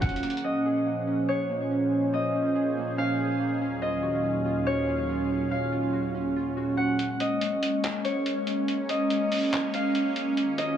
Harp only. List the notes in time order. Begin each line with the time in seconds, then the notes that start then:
0.01 F#5
0.44 D#5
1.29 C#5
2.14 D#5
2.98 F5
3.82 D#5
4.67 C#5
5.51 F5
6.77 F#5
7.20 D#5
8.04 C#5
8.89 D#5
9.74 F5
10.58 D#5